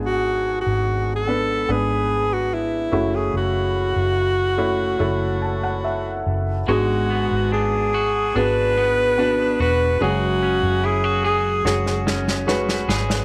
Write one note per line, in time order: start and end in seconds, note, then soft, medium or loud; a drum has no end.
0.00 0.62 G#1 medium
0.00 0.83 G#2 soft
0.00 1.19 G#3 medium
0.00 1.19 B3 medium
0.00 1.20 D4 medium
0.00 1.20 G#4 medium
0.06 0.56 F#4 medium
0.61 1.11 F#4 medium
0.66 1.65 G#1 medium
1.16 1.73 A4 medium
1.27 1.67 B3 soft
1.27 1.67 D4 soft
1.27 1.67 B4 medium
1.68 2.88 G#1 medium
1.68 2.92 G#3 medium
1.68 2.92 B3 soft
1.68 2.93 D4 medium
1.68 2.35 G#4 medium
1.68 2.93 B4 medium
2.33 2.55 F#4 medium
2.54 3.17 E4 medium
2.92 3.31 F#1 medium
2.92 4.12 C#3 soft
2.92 4.49 A3 medium
2.92 4.49 C#4 medium
2.92 4.50 E4 medium
2.92 4.50 F#4 medium
3.16 3.35 G#4 medium
3.34 3.92 F#1 medium
3.34 6.24 F#4 medium
3.96 4.96 F#1 medium
4.57 4.97 A3 medium
4.57 4.98 C#4 medium
4.57 4.98 E4 medium
4.57 4.98 F#4 medium
4.99 6.22 F#1 medium
4.99 6.60 A3 medium
4.99 6.60 C#4 medium
4.99 6.60 E4 medium
4.99 6.60 A4 medium
5.42 5.61 A5 soft
5.63 5.83 F#5 medium
5.84 6.64 E5 soft
6.26 6.65 F#1 medium
6.68 7.27 G#1 medium
6.68 7.90 G#2 soft
6.68 10.04 G#3 medium
6.68 7.90 G#3 soft
6.68 8.27 B3 medium
6.68 8.27 D4 medium
6.68 8.27 F#4 medium
6.68 7.94 F#4 medium
6.68 7.49 F#4 medium
6.68 8.27 G#4 medium
7.10 8.76 B3 medium
7.31 8.31 G#1 medium
7.52 8.35 D4 soft
7.52 8.39 G#4 medium
7.94 9.60 F#4 medium
8.35 9.56 G#1 medium
8.35 9.14 B3 medium
8.35 9.14 D4 soft
8.35 9.18 D4 medium
8.35 9.14 F#4 medium
8.35 9.15 G#4 medium
8.35 9.61 B4 loud
8.78 10.09 B3 soft
9.18 9.97 B3 medium
9.18 9.97 D4 medium
9.18 10.09 D4 medium
9.18 9.97 F#4 soft
9.18 9.97 B4 medium
9.60 9.98 E1 medium
9.60 10.01 F#4 medium
9.60 9.99 B4 medium
10.01 10.59 F#1 medium
10.01 13.25 F#2 medium
10.01 11.20 C#3 medium
10.01 11.57 G#3 medium
10.01 11.57 C#4 medium
10.01 11.57 F#4 medium
10.01 10.87 F#4 medium
10.01 11.24 G#4 medium
10.01 11.57 G#4 medium
10.43 12.06 C#4 medium
10.63 11.61 F#1 medium
10.84 11.04 E4 medium
10.84 11.25 G#4 medium
11.04 11.64 F#4 soft
11.24 12.88 G#4 medium
11.24 12.03 G#4 medium
11.65 12.84 F#1 medium
11.65 12.43 G#3 medium
11.65 12.43 C#4 medium
11.65 12.43 F#4 medium
11.65 12.47 F#4 medium
11.65 12.44 G#4 medium
11.65 snare soft
11.86 snare soft
12.07 13.25 C#4 medium
12.07 snare medium
12.28 snare medium
12.47 13.25 G#3 medium
12.47 13.25 C#4 medium
12.47 13.25 F#4 medium
12.47 13.25 B4 medium
12.47 snare medium
12.69 snare medium
12.88 13.25 G#1 medium
12.88 13.25 G#4 medium
12.88 snare medium
13.10 snare medium